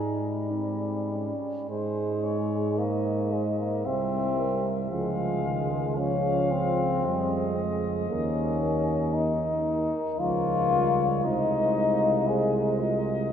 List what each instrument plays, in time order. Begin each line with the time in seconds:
Already playing: tuba G#2, euphonium G3, trombone G#3, french horn section D#4, cornet G#4
0.50 french horn section C4
1.11 french horn section C#4
1.68 tuba G#2, trombone G#3, euphonium G#3, french horn section G#4, cornet C5
2.24 cornet C#5
2.78 euphonium A#3, french horn section C5, cornet D#5
3.33 euphonium G#3
3.59 euphonium A#3
3.85 tuba C2, trombone G3, euphonium C4, french horn section C5, cornet E5
4.38 french horn section A#4
4.90 tuba C#2, trombone F3, euphonium G#3, french horn section G#4, cornet F5
5.44 trombone D#3
5.96 trombone F3, euphonium C#4, cornet F5
6.51 euphonium C4
7.03 tuba F2, trombone G3, french horn section G#4, cornet D#5
7.57 trombone G#3
8.09 tuba D#2, trombone A#3, euphonium C#4, french horn section A#4
8.61 french horn section A#4
9.14 euphonium D#4
10.19 tuba C#2, trombone F3, euphonium F4, french horn section A#4, cornet C#5
10.72 trombone G3
11.24 tuba C2, trombone G#3, euphonium D#4, french horn section C5, cornet D#5
12.28 euphonium G#4, french horn section C5, cornet D#5
12.79 french horn section F4